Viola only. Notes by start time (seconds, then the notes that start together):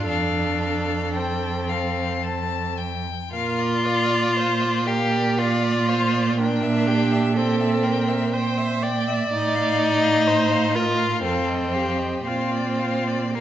0.08 A4
3.33 A#4
3.86 D5
4.37 C5
4.88 A#4
5.39 D5
5.89 C5
6.38 A#4
6.87 G4
7.36 A4
7.84 A#4
8.33 C5
8.83 D5
10.27 C5
10.75 A#4
11.24 A4
11.74 G4
12.27 F4
13.34 G4